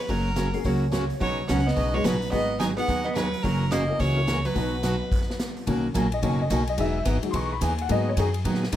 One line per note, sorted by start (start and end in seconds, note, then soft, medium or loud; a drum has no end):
0.00 0.11 B4 medium
0.08 0.54 F#1 medium
0.08 0.28 C#3 medium
0.08 0.28 F#3 medium
0.08 0.55 F#3 medium
0.08 0.28 A#3 medium
0.08 0.29 C#4 medium
0.08 0.29 F#4 medium
0.08 0.54 A#4 medium
0.08 kick soft
0.08 open hi-hat soft
0.36 0.47 C#3 medium
0.36 0.48 F#3 medium
0.36 0.48 A#3 medium
0.36 0.48 C#4 medium
0.36 0.48 F#4 medium
0.36 snare medium
0.36 closed hi-hat soft
0.53 0.90 A#3 medium
0.53 0.91 C#4 medium
0.53 0.91 F#4 medium
0.53 0.65 G#4 medium
0.53 0.91 A#4 medium
0.53 open hi-hat soft
0.64 1.09 C#2 medium
0.64 0.84 C#3 medium
0.64 0.84 F#3 medium
0.64 0.85 A#3 medium
0.64 0.84 C#4 medium
0.64 0.85 F#4 medium
0.64 0.92 C#5 medium
0.64 kick soft
0.64 open hi-hat soft
0.92 1.03 C#3 medium
0.92 1.03 F#3 medium
0.92 1.04 A#3 medium
0.92 1.04 C#4 medium
0.92 1.04 F#4 medium
0.92 1.15 C#5 medium
0.92 snare medium
0.92 closed hi-hat medium
1.10 open hi-hat soft
1.20 1.43 B1 medium
1.20 1.40 B2 medium
1.20 1.40 C#3 medium
1.20 1.47 F#3 medium
1.20 1.40 F#3 medium
1.20 1.40 B3 medium
1.20 1.40 D#4 medium
1.20 1.41 B4 medium
1.20 1.47 C#5 medium
1.20 kick soft
1.20 open hi-hat soft
1.48 1.73 C#2 medium
1.48 1.59 B2 medium
1.48 1.60 C#3 medium
1.48 1.60 F#3 medium
1.48 1.60 B3 medium
1.48 1.67 C#4 medium
1.48 1.60 D#4 medium
1.48 1.60 B4 medium
1.48 1.68 F#5 medium
1.48 snare medium
1.48 closed hi-hat soft
1.59 snare soft
1.66 1.94 B3 medium
1.66 1.96 D#5 medium
1.66 snare soft
1.76 2.01 B1 medium
1.76 1.96 B2 medium
1.76 1.96 C#3 medium
1.76 1.96 F#3 medium
1.76 1.96 B3 medium
1.76 1.96 D#4 medium
1.76 1.96 B4 medium
1.76 kick soft
1.76 open hi-hat soft
1.93 2.04 G#3 medium
1.93 2.30 C#4 medium
1.93 2.30 D#4 medium
1.93 2.30 F#4 medium
1.93 2.31 B4 medium
1.93 2.06 C#5 medium
2.04 2.28 A#1 medium
2.04 2.15 B2 medium
2.04 2.16 C#3 medium
2.04 2.15 F#3 medium
2.04 2.32 F#3 medium
2.04 2.16 B3 medium
2.04 2.16 D#4 medium
2.04 2.16 B4 medium
2.04 2.31 B4 medium
2.04 snare medium
2.04 closed hi-hat medium
2.22 open hi-hat soft
2.32 2.77 G#1 medium
2.32 2.52 D#3 medium
2.32 2.52 F#3 medium
2.32 2.58 B3 medium
2.32 2.48 B3 medium
2.32 2.52 B3 medium
2.32 2.48 D#4 medium
2.32 2.52 D#4 medium
2.32 2.48 F#4 medium
2.32 2.52 G#4 medium
2.32 2.48 G#4 medium
2.32 2.58 D#5 loud
2.32 kick soft
2.32 open hi-hat soft
2.60 2.71 D#3 medium
2.60 2.71 F#3 medium
2.60 2.71 B3 medium
2.60 2.65 D#4 medium
2.60 2.71 D#4 medium
2.60 2.71 G#4 medium
2.60 2.67 G#5 medium
2.60 snare medium
2.60 closed hi-hat soft
2.76 2.87 B3 medium
2.76 3.03 B3 medium
2.76 2.87 D#4 medium
2.76 2.87 F#4 medium
2.76 2.87 G#4 medium
2.76 3.06 F#5 medium
2.76 open hi-hat soft
2.88 3.33 D#2 medium
2.88 3.08 D#3 medium
2.88 3.08 F#3 medium
2.88 3.08 B3 medium
2.88 3.08 D#4 medium
2.88 3.08 G#4 medium
2.88 kick soft
2.88 open hi-hat soft
3.05 3.16 B3 medium
3.05 3.14 D#5 medium
3.15 3.27 D#3 medium
3.15 3.27 F#3 medium
3.15 3.42 F#3 medium
3.15 3.27 B3 medium
3.15 3.27 D#4 medium
3.15 3.27 G#4 medium
3.15 3.44 B4 medium
3.15 snare medium
3.15 closed hi-hat medium
3.34 open hi-hat soft
3.43 3.89 F#1 medium
3.43 3.63 C#3 medium
3.43 3.63 E3 medium
3.43 3.72 F#3 medium
3.43 3.63 A#3 medium
3.43 3.64 C#4 medium
3.43 3.64 F#4 medium
3.43 3.73 A#4 loud
3.43 kick soft
3.43 open hi-hat soft
3.71 3.82 C#3 medium
3.71 3.83 E3 medium
3.71 3.83 A#3 medium
3.71 3.99 A#3 medium
3.71 3.83 C#4 medium
3.71 3.83 F#4 medium
3.71 4.02 D#5 medium
3.71 snare medium
3.71 closed hi-hat medium
3.88 4.14 C#4 medium
3.88 4.15 E4 medium
3.88 4.15 F#4 medium
3.88 4.15 A#4 medium
3.99 4.44 C#2 medium
3.99 4.19 C#3 medium
3.99 4.19 E3 medium
3.99 4.44 F#3 medium
3.99 4.19 A#3 medium
3.99 4.19 C#4 medium
3.99 4.20 F#4 medium
3.99 4.46 C#5 medium
3.99 kick soft
3.99 open hi-hat soft
4.16 4.26 C#4 medium
4.16 4.26 E4 medium
4.16 4.27 F#4 medium
4.16 4.27 A#4 medium
4.27 4.39 C#3 medium
4.27 4.39 E3 medium
4.27 4.39 A#3 medium
4.27 4.39 C#4 medium
4.27 4.39 F#4 medium
4.27 snare medium
4.27 closed hi-hat medium
4.45 5.39 F#3 medium
4.45 5.39 B4 medium
4.45 open hi-hat soft
4.55 5.00 B1 medium
4.55 4.75 B2 medium
4.55 4.75 F#3 medium
4.55 5.32 B3 medium
4.55 4.75 B3 medium
4.55 5.32 D#4 medium
4.55 4.75 D#4 medium
4.55 5.33 F#4 medium
4.55 4.75 F#4 medium
4.55 5.33 B4 medium
4.55 kick soft
4.55 open hi-hat soft
4.83 4.94 B2 medium
4.83 4.94 F#3 medium
4.83 4.94 B3 medium
4.83 4.95 D#4 medium
4.83 4.95 F#4 medium
4.83 snare medium
4.83 closed hi-hat soft
5.12 kick medium
5.12 open hi-hat soft
5.12 crash medium
5.21 snare soft
5.30 snare soft
5.40 snare medium
5.40 closed hi-hat medium
5.57 open hi-hat soft
5.67 5.94 B1 medium
5.67 5.86 B2 medium
5.67 5.87 D#3 medium
5.67 5.86 F#3 medium
5.67 5.87 A#3 medium
5.67 5.88 A#3 soft
5.67 5.88 C#4 medium
5.67 5.87 D#4 medium
5.67 5.87 F#4 medium
5.67 kick soft
5.67 ride medium
5.94 6.22 A#1 medium
5.94 6.05 B2 medium
5.94 6.06 F#3 medium
5.94 6.06 A#3 medium
5.94 6.06 D#4 medium
5.94 6.06 F#4 medium
5.94 6.12 G#5 medium
5.94 kick soft
5.94 hi-hat pedal soft
5.94 ride medium
6.12 6.23 D#5 medium
6.12 ride soft
6.22 6.50 F#1 medium
6.22 6.42 B2 medium
6.22 6.38 D#3 soft
6.22 6.42 F#3 medium
6.22 6.38 A#3 soft
6.22 6.42 A#3 medium
6.22 6.38 C#4 medium
6.22 6.42 D#4 medium
6.22 6.42 F#4 medium
6.22 6.40 G#5 medium
6.22 kick soft
6.22 ride medium
6.42 6.51 D#5 medium
6.50 6.77 B1 medium
6.50 6.61 B2 medium
6.50 6.61 F#3 medium
6.50 6.61 A#3 medium
6.50 6.61 D#4 medium
6.50 6.62 F#4 medium
6.50 6.68 G#5 medium
6.50 kick soft
6.50 hi-hat pedal medium
6.50 ride medium
6.67 6.79 D#5 medium
6.67 ride soft
6.77 7.05 E1 medium
6.77 6.97 E3 medium
6.77 7.21 F#3 medium
6.77 7.21 G#3 medium
6.77 6.98 B3 medium
6.77 6.98 D#4 medium
6.77 7.22 D#4 medium
6.77 6.98 G#4 medium
6.77 7.06 E5 loud
6.77 kick soft
6.77 ride medium
7.05 7.22 G#1 medium
7.05 7.17 E3 medium
7.05 7.17 B3 medium
7.05 7.17 D#4 medium
7.05 7.17 G#4 medium
7.05 kick soft
7.05 hi-hat pedal medium
7.05 ride medium
7.23 7.33 F#3 soft
7.23 7.33 G#3 soft
7.23 7.33 D#4 medium
7.23 muted upright bass stroke soft
7.23 ride medium
7.31 7.61 B1 medium
7.31 7.53 E3 medium
7.31 7.53 B3 medium
7.31 7.53 D#4 medium
7.31 7.53 G#4 medium
7.31 7.33 C6 medium
7.31 kick soft
7.31 ride medium
7.36 7.51 C#6 medium
7.53 7.62 B5 medium
7.61 7.88 D#2 medium
7.61 7.72 E3 medium
7.61 7.72 B3 medium
7.61 7.73 D#4 medium
7.61 7.73 G#4 medium
7.61 7.79 G#5 medium
7.61 kick soft
7.61 hi-hat pedal medium
7.61 ride medium
7.78 7.91 F#5 medium
7.78 ride soft
7.89 8.16 G#2 medium
7.89 8.09 D#3 medium
7.89 8.09 F#3 medium
7.89 8.10 A#3 medium
7.89 8.09 B3 medium
7.89 8.10 B3 medium
7.89 8.09 D#4 medium
7.89 8.09 G#4 medium
7.89 8.07 D#5 loud
7.89 kick soft
7.89 ride medium
8.09 8.18 C#5 medium
8.17 8.44 F#2 loud
8.17 8.28 D#3 medium
8.17 8.28 F#3 medium
8.17 8.28 B3 medium
8.17 8.28 D#4 medium
8.17 8.28 G#4 medium
8.17 8.35 G#4 loud
8.17 kick soft
8.17 hi-hat pedal soft
8.17 ride medium
8.34 ride medium
8.45 8.72 A#2 medium
8.45 8.64 D#3 medium
8.45 8.64 F#3 medium
8.45 8.65 B3 medium
8.45 8.65 D#4 medium
8.45 8.65 G#4 medium
8.45 kick soft
8.45 ride medium
8.54 snare soft
8.63 snare soft
8.72 8.76 G#2 loud
8.72 8.76 D#3 medium
8.72 8.76 F#3 medium
8.72 8.76 B3 medium
8.72 8.76 D#4 medium
8.72 kick soft
8.72 hi-hat pedal medium
8.72 ride medium